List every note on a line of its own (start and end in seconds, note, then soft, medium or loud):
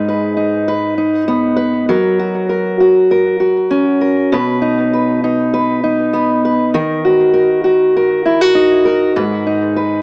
0.00 1.90 G#2 medium
0.00 1.77 G#3 medium
0.00 0.37 D#4 medium
0.08 0.67 B4 soft
0.37 0.96 D#4 soft
0.68 1.55 B4 medium
0.98 1.96 D#4 soft
1.28 1.96 B3 medium
1.56 1.88 B4 medium
1.89 5.39 F#3 medium
1.89 2.48 A#4 medium
2.19 2.80 F#4 medium
2.49 3.10 A#4 medium
2.80 3.40 F#4 soft
3.11 4.00 A#4 medium
3.40 4.61 F#4 soft
3.71 4.38 C#4 medium
4.01 4.32 A#4 medium
4.33 6.75 B2 medium
4.33 4.92 B4 medium
4.62 5.23 D#4 medium
4.93 5.52 B4 medium
5.24 5.83 D#4 medium
5.54 6.44 B4 medium
5.84 7.04 D#4 medium
6.13 6.81 B3 soft
6.45 6.74 B4 medium
6.74 10.02 D#3 medium
6.74 7.32 A#4 medium
7.04 7.63 F#4 medium
7.33 7.95 A#4 medium
7.64 8.25 F#4 soft
7.97 8.84 A#4 medium
8.26 8.41 E4 soft
8.41 9.23 F#4 soft
8.55 9.46 D#4 medium
8.85 9.16 A#4 medium
9.16 10.02 G#2 medium
9.16 9.75 B4 medium
9.46 10.02 D#4 soft
9.76 10.02 B4 medium